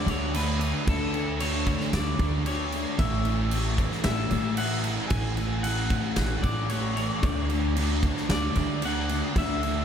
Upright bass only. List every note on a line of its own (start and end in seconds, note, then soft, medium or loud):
0.06 0.71 D2 medium
0.87 1.73 D2 loud
1.93 2.15 D2 medium
2.19 2.83 D2 loud
2.99 3.84 A1 loud
4.05 4.26 A1 loud
4.31 4.96 A1 medium
5.10 5.96 A1 loud
6.17 6.38 A1 loud
6.43 7.08 A1 medium
7.23 8.09 D2 loud
8.29 8.51 D2 medium
8.56 9.20 D2 loud
9.36 9.85 D2 loud